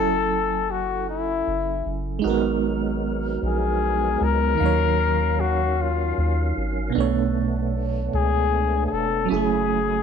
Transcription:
Already playing: analog synth bass F#1, fm electric piano F#3 C#4 E4 A4 G#5, flugelhorn A4
0.71 flugelhorn F#4
1.09 flugelhorn E4
1.48 analog synth bass F#1
1.86 analog synth bass F#1
2.19 fm electric piano G#3 D#4
2.24 analog synth bass G#1, tonewheel organ F#3 G#3 B3 A#4, fm electric piano F#4 A#4
2.30 fm electric piano B3
3.43 analog synth bass A#1, flugelhorn G#4
4.21 analog synth bass C#2, flugelhorn A#4
4.55 fm electric piano D#3 D#4
4.60 analog synth bass D#2, tonewheel organ D#3 C#4 F5, fm electric piano F#3 F5
4.66 fm electric piano C#5
5.40 flugelhorn F#4
5.81 flugelhorn F4
6.18 analog synth bass D#2
6.57 analog synth bass G#1
6.90 fm electric piano B2 B3
6.95 analog synth bass B1, tonewheel organ A3 B3 D4, fm electric piano A3 D4
7.00 fm electric piano C#5
8.14 analog synth bass C#2, flugelhorn G#4
8.86 flugelhorn G#4
8.92 analog synth bass E1, flugelhorn A4
9.26 fm electric piano F#3 C#4
9.30 analog synth bass F#1, tonewheel organ F#3 A3 E4 G#4, fm electric piano E4 G#4, flugelhorn G#4
9.36 fm electric piano A3

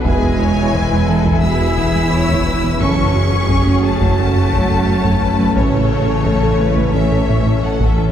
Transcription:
Already playing: viola section B4
0.03 double bass section E1, detuned saw bass E1, analog synth bass E2, trombone section B2 E4, synth arpeggio sound E3, analog synth pad E3 B3 E4 E5, cello section G#3, viola section E4, violin section G#4 G#5, taiko
0.22 analog synth bass E2, synth arpeggio sound E4
0.39 analog synth bass E2, synth arpeggio sound E4, violin section C#5
0.57 analog synth bass E2, synth arpeggio sound E4
0.74 analog synth bass E2, synth arpeggio sound E3, violin section B4, taiko
0.92 analog synth bass E2, synth arpeggio sound E4
1.09 analog synth bass E3, violin section A4
1.25 analog synth bass E2, synth arpeggio sound E3, taiko
1.42 analog synth bass E2, trombone section B2 E4, synth arpeggio sound G#3, cello section E4, violin section G#4 E6
1.60 analog synth bass E2, synth arpeggio sound E4
1.77 analog synth bass E2, synth arpeggio sound E3, taiko
1.95 analog synth bass E2, synth arpeggio sound G#3
2.12 analog synth bass E2, violin section C#5
2.29 analog synth bass E2, synth arpeggio sound E3, taiko
2.47 analog synth bass E2, violin section B4
2.64 analog synth bass E3, synth arpeggio sound B3
2.80 double bass section F#1, detuned saw bass F#1, analog synth bass F#2, trombone section C#3 C#4, synth arpeggio sound F#3, analog synth pad F#3 C#4 F#4 C#5, viola section C#4, cello section C#4, violin section A4 C#6, taiko
2.98 analog synth bass F#2, synth arpeggio sound F#4
3.15 analog synth bass F#2, synth arpeggio sound F#4, violin section G#4
3.33 analog synth bass F#2, synth arpeggio sound F#4
3.49 analog synth bass F#2, synth arpeggio sound F#3, viola section A3, taiko
3.67 analog synth bass F#2, synth arpeggio sound F#4
3.84 analog synth bass F#3, cello section A3, violin section A5
4.02 analog synth bass F#2, synth arpeggio sound F#3, taiko
4.18 analog synth bass F#2, trombone section C#3 C#4, synth arpeggio sound A3, violin section F#4
4.36 analog synth bass F#2, synth arpeggio sound F#4
4.53 analog synth bass F#2, synth arpeggio sound F#3, taiko
4.71 analog synth bass F#2, synth arpeggio sound A3
4.88 analog synth bass F#2, violin section C#5
5.05 analog synth bass F#2, synth arpeggio sound F#3, taiko
5.22 analog synth bass F#2, violin section B4
5.39 analog synth bass F#3, synth arpeggio sound C#4
5.56 detuned saw bass A1, double bass section A1, analog synth bass A2, cello section C#3, trombone section E3 C#4, analog synth pad E3 A4, synth arpeggio sound A3, violin section A4 C#5, taiko
5.73 analog synth bass A2, synth arpeggio sound A4
5.91 analog synth bass A2, synth arpeggio sound A4
6.08 analog synth bass A2, synth arpeggio sound A4
6.25 analog synth bass A2, synth arpeggio sound A3, violin section A4, taiko
6.43 analog synth bass A2, synth arpeggio sound A4
6.59 analog synth bass A3, violin section B4
6.77 analog synth bass A2, synth arpeggio sound A3, taiko
6.94 analog synth bass A2, trombone section E3 C#4, cello section E3, synth arpeggio sound C#4, violin section C#5 E5
7.12 analog synth bass A2, synth arpeggio sound A4
7.29 analog synth bass A2, synth arpeggio sound A3, taiko
7.46 analog synth bass A2, synth arpeggio sound C#4
7.63 analog synth bass A2, cello section F#3, violin section A4 F#5
7.80 analog synth bass A2, synth arpeggio sound A3, taiko
7.87 cello section E3, violin section E5
7.98 analog synth bass A2

